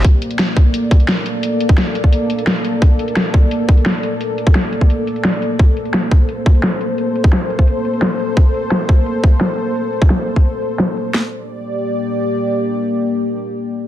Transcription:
<<
  \new Staff \with { instrumentName = "Analog synth pad" } { \time 4/4 \key g \minor \tempo 4 = 173 << { d''1~ | d''1~ | d''1~ | d''1 |
c''1~ | c''1~ | c''1~ | c''1 |
<bes g' d''>1~ | <bes g' d''>1 | } \\ { <bes a'>1~ | <bes a'>1~ | <bes a'>1~ | <bes a'>1~ |
<bes a'>1~ | <bes a'>1~ | <bes a'>1~ | <bes a'>1 |
r1 | r1 | } >> }
  \new DrumStaff \with { instrumentName = "Drums" } \drummode { \time 4/4 <hh bd>8 hh16 hh16 <hh sn>8 <hh bd>8 hh8 <hh bd>16 hh16 <hh sn>8 hh8 | hh8 hh16 <hh bd>16 <hh sn>8 hh16 bd16 hh8 hh16 hh16 <hh sn>16 hh16 hh8 | <hh bd>8 hh16 hh16 <hh sn>8 <hh bd>8 hh8 <hh bd>16 hh16 <hh sn>8 hh8 | hh8 hh16 <hh bd>16 <hh sn>8 hh16 bd16 hh8 hh16 hh16 <hh sn>16 hh16 hh8 |
<hh bd>8 hh16 hh16 <hh sn>8 <hh bd>8 hh8 <hh bd>16 hh16 <hh sn>8 hh8 | hh8 hh16 bd16 <hh sn>8 hh16 bd16 hh8 hh16 hh16 <hh sn>16 hh16 hh8 | bd8 hh16 hh16 <hh sn>8 bd8 hh8 bd16 hh16 <hh sn>8 hh8 | hh8 hh16 <hh bd>16 <hh sn>8 hh16 bd16 hh8 hh16 hh16 <hh sn>16 hh16 hh8 |
sn4 r4 r4 r4 | r4 r4 r4 r4 | }
>>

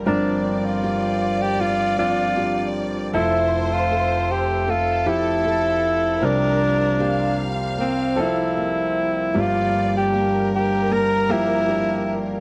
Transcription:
<<
  \new Staff \with { instrumentName = "Violin section" } { \time 4/4 \key c \mixolydian \tempo 4 = 78 d''1 | c''2 a'2 | bes'4 f''2~ f''8 r8 | d''4 bes'2. | }
  \new Staff \with { instrumentName = "Alto saxophone" } { \time 4/4 \key c \mixolydian d'8. f'4 g'16 f'8 f'4 r8 | e'8. f'8. g'8 f'8 e'4. | d'4.~ d'16 r16 c'8 e'4. | f'8. g'8. g'8 bes'8 e'4~ e'16 r16 | }
  \new Staff \with { instrumentName = "Nylon-string guitar" } { \time 4/4 \key c \mixolydian g,4 <c' f' g'>4 <c' f' g'>8 c'8 <c' f' g'>4 | f4 <c' a'>4 <c' a'>8 c'8 <c' e' a'>4 | c4 <bes f' g'>4 <bes g'>8 bes8 <bes g'>4 | g,4 <bes d' g'>4 <bes d' g'>8 bes8 <bes d' g'>4 | }
  \new Staff \with { instrumentName = "Accordion" } { \time 4/4 \key c \mixolydian c'1 | e''1 | r1 | d'1 | }
  \new Staff \with { instrumentName = "Accordion" } { \time 4/4 \key c \mixolydian << { <g, g bes g'>1 | <a a'>1 | <g bes g'>1~ | <g bes g'>1 | } \\ { f1~ | f1~ | f1~ | f1 | } >> }
  \new Staff \with { instrumentName = "Grand piano" } { \time 4/4 \key c \mixolydian <f c' bes'>2 r8 <f c' d'>4. | <f a' e''>2 r8 <f e' g'>4. | <f c' bes'>2 r8 <f c' a'>4. | <f bes g'>2 r8 <f bes g'>4. | }
  \new Staff \with { instrumentName = "Grand piano" } { \clef bass \time 4/4 \key c \mixolydian <g,, g,>1 | <f,, f,>1 | <c, c>1 | <g,, g,>1 | }
>>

